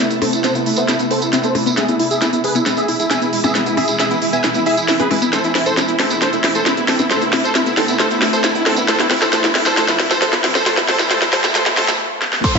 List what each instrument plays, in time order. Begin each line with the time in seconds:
Already playing: ambient pad C3 A3 B3 A4
0.00 ambient pad D4
0.10 synth pluck B3, supersaw synth E4, closed hi-hat, tambourine
0.22 synth pluck C4, supersaw synth A4 C5, open hi-hat, percussion blips
0.33 synth pluck E4, supersaw synth E4, closed hi-hat, tambourine
0.44 synth pluck C4, supersaw synth A4 C5, snare, closed hi-hat, tambourine
0.55 synth pluck B3, supersaw synth E4, closed hi-hat, tambourine
0.66 synth pluck A3, supersaw synth E4, open hi-hat
0.76 synth pluck B3, supersaw synth C5 E5, closed hi-hat, tambourine
0.88 synth pluck A3, supersaw synth E4, snare, closed hi-hat, tambourine
0.99 synth pluck B3, supersaw synth E4, closed hi-hat, tambourine
1.11 synth pluck C4, supersaw synth A4 C5, open hi-hat
1.22 supersaw synth E4, synth pluck E4, closed hi-hat, tambourine
1.33 synth pluck C4, supersaw synth E4, snare, closed hi-hat, tambourine
1.43 synth pluck B3, supersaw synth A4 C5, closed hi-hat, tambourine
1.55 synth pluck A3, supersaw synth E4, open hi-hat, percussion blips
1.66 synth pluck B3, supersaw synth E4, closed hi-hat, tambourine
1.77 ambient pad B2 E3 G#3 E4 G#4, synth pluck G#3, supersaw synth G#4 E5, snare, closed hi-hat, tambourine
1.88 synth pluck B3, supersaw synth E4, closed hi-hat, tambourine
2.00 synth pluck E4, supersaw synth E4, open hi-hat
2.11 synth pluck G#4, supersaw synth G#4 E5, closed hi-hat, tambourine
2.21 synth pluck E4, supersaw synth E4, snare, closed hi-hat, tambourine
2.33 synth pluck B3, supersaw synth E4, closed hi-hat, tambourine
2.44 synth pluck G#3, supersaw synth G#4 B4, open hi-hat
2.55 synth pluck B3, supersaw synth E4, closed hi-hat, tambourine
2.66 synth pluck G#3, supersaw synth E4, snare, closed hi-hat, tambourine
2.77 synth pluck B3, supersaw synth G#4 E5, closed hi-hat, tambourine
2.88 synth pluck E4, supersaw synth E4, open hi-hat
3.00 supersaw synth E4, synth pluck G#4, closed hi-hat, tambourine
3.11 synth pluck E4, supersaw synth E5 G#5, snare, closed hi-hat, tambourine
3.22 synth pluck B3, supersaw synth E4, closed hi-hat, tambourine
3.33 synth pluck G#3, supersaw synth E4, open hi-hat
3.44 synth pluck B3, supersaw synth G#4 E5, closed hi-hat, tambourine, percussion blips
3.55 synth pluck G#3, supersaw synth E4, snare, closed hi-hat, tambourine
3.66 synth pluck B3, supersaw synth E4, closed hi-hat, tambourine
3.77 synth pluck E4, supersaw synth G#4 E5, open hi-hat, percussion blips
3.88 supersaw synth E4, synth pluck G#4, closed hi-hat, tambourine
3.99 synth pluck E4, supersaw synth G#4 E5, snare, closed hi-hat, tambourine
4.11 synth pluck B3, supersaw synth E4, closed hi-hat, tambourine
4.22 synth pluck G#3, supersaw synth E4, open hi-hat
4.33 synth pluck B3, supersaw synth E5 G#5, closed hi-hat, tambourine
4.44 synth pluck G#3, supersaw synth E4, snare, closed hi-hat, tambourine
4.54 synth pluck B3, supersaw synth E4, closed hi-hat, tambourine
4.66 synth pluck E4, supersaw synth G#4 E5, open hi-hat
4.77 supersaw synth E4, synth pluck G#4, closed hi-hat, tambourine
4.88 supersaw synth E4, synth pluck E4, snare, open hi-hat, tambourine
4.99 synth pluck B3, supersaw synth G#4 B4, closed hi-hat, tambourine, percussion blips
5.10 synth pluck G#3, supersaw synth E4, open hi-hat, percussion blips
5.22 synth pluck B3, supersaw synth E4, closed hi-hat, tambourine
5.33 ambient pad C3 A3 B3 E4 A4, synth pluck A3, supersaw synth A4 C5, snare, closed hi-hat, tambourine, riser
5.44 synth pluck B3, supersaw synth E4, closed hi-hat, tambourine
5.55 synth pluck C4, supersaw synth E4, snare, open hi-hat
5.66 synth pluck E4, supersaw synth A4 C5, closed hi-hat, tambourine
5.77 synth pluck C4, supersaw synth E4, snare, closed hi-hat, tambourine
5.88 synth pluck B3, supersaw synth E4, closed hi-hat, tambourine
5.99 synth pluck A3, supersaw synth C4 A4, snare, open hi-hat
6.10 synth pluck B3, supersaw synth E4, closed hi-hat, tambourine
6.22 synth pluck A3, supersaw synth A4 C5, snare, closed hi-hat, tambourine
6.33 synth pluck B3, supersaw synth E4, closed hi-hat, tambourine
6.44 synth pluck C4, supersaw synth E4, snare, open hi-hat
6.55 synth pluck E4, supersaw synth A4 C5, closed hi-hat, tambourine
6.66 synth pluck C4, supersaw synth E4, snare, closed hi-hat, tambourine
6.77 synth pluck B3, supersaw synth E4, closed hi-hat, tambourine
6.88 synth pluck A3, supersaw synth C4 A4, snare, open hi-hat
6.99 synth pluck B3, supersaw synth E4, closed hi-hat, tambourine, percussion blips
7.11 synth pluck A3, ambient pad D4, supersaw synth A4 C5, snare, closed hi-hat, tambourine
7.21 synth pluck B3, supersaw synth E4, closed hi-hat, tambourine
7.33 synth pluck C4, supersaw synth E4, snare, open hi-hat, percussion blips
7.44 synth pluck E4, supersaw synth A4 C5, closed hi-hat, tambourine
7.55 synth pluck C4, supersaw synth E4, snare, closed hi-hat, tambourine
7.66 synth pluck B3, supersaw synth E4, closed hi-hat, tambourine
7.77 synth pluck A3, supersaw synth C4 A4, snare, open hi-hat
7.88 synth pluck B3, supersaw synth E4, closed hi-hat, tambourine
7.99 synth pluck A3, supersaw synth A4 C5, snare, closed hi-hat, tambourine
8.11 synth pluck B3, supersaw synth E4, closed hi-hat, tambourine
8.22 synth pluck C4, supersaw synth E4, snare, open hi-hat
8.33 synth pluck E4, supersaw synth A4 C5, closed hi-hat, tambourine
8.44 synth pluck C4, supersaw synth E4, snare, closed hi-hat, tambourine
8.55 synth pluck B3, supersaw synth E4, closed hi-hat, tambourine
8.66 synth pluck A3, supersaw synth C4 A4, snare, open hi-hat, percussion blips
8.76 synth pluck B3, supersaw synth E4, closed hi-hat, tambourine
8.88 ambient pad F3 F4 A4, synth pluck A3, supersaw synth A4 C5, snare, closed hi-hat, tambourine
8.99 synth pluck B3, supersaw synth E4, snare, closed hi-hat, tambourine
9.10 synth pluck C4, supersaw synth E4, snare, open hi-hat
9.22 synth pluck E4, supersaw synth A4 C5, snare, closed hi-hat, tambourine
9.32 synth pluck A3, supersaw synth A4 C5, snare, closed hi-hat, tambourine
9.44 synth pluck B3, supersaw synth E4, snare, closed hi-hat, tambourine
9.55 synth pluck C4, supersaw synth E4, snare, open hi-hat
9.65 synth pluck E4, supersaw synth A4 C5, snare, closed hi-hat, tambourine
9.77 synth pluck A3, supersaw synth A4 C5, snare, closed hi-hat, tambourine
9.88 synth pluck B3, supersaw synth E4, snare, closed hi-hat, tambourine
9.99 synth pluck C4, supersaw synth E4, snare, open hi-hat
10.11 synth pluck E4, supersaw synth A4 C5, snare, closed hi-hat, tambourine
10.22 synth pluck A3, supersaw synth A4 C5, snare, closed hi-hat, tambourine
10.33 synth pluck B3, supersaw synth E4, snare, closed hi-hat, tambourine
10.44 synth pluck C4, supersaw synth E4, snare, open hi-hat
10.55 synth pluck E4, supersaw synth A4 C5, snare, closed hi-hat, tambourine, percussion blips
10.66 synth pluck A3, supersaw synth A4 C5, snare, closed hi-hat, tambourine
10.77 synth pluck B3, supersaw synth E4, snare, closed hi-hat, tambourine
10.88 synth pluck A3, supersaw synth A4 C5, snare, open hi-hat, percussion blips
10.99 synth pluck B3, supersaw synth E4, snare, closed hi-hat, tambourine
11.10 synth pluck A3, supersaw synth A4 C5, snare, closed hi-hat, tambourine
11.22 synth pluck B3, supersaw synth E4, snare, closed hi-hat, tambourine
11.33 synth pluck A3, supersaw synth A4 C5, snare, open hi-hat
11.44 synth pluck B3, supersaw synth E4, snare, closed hi-hat, tambourine
11.55 synth pluck A3, supersaw synth A4 C5, snare, closed hi-hat, tambourine
11.66 synth pluck B3, supersaw synth E4, snare, closed hi-hat, tambourine
11.77 synth pluck A3, supersaw synth A4 C5, snare, open hi-hat, percussion blips
11.88 synth pluck B3, supersaw synth E4, snare, closed hi-hat, tambourine
12.22 snare
12.33 snare
12.44 synth pluck A3, supersaw synth A4 C5, grand piano C6, kick, closed hi-hat, crash, tambourine, downlifter
12.55 analog synth bass A1, synth pluck B3, supersaw synth E4, grand piano E5, closed hi-hat, tambourine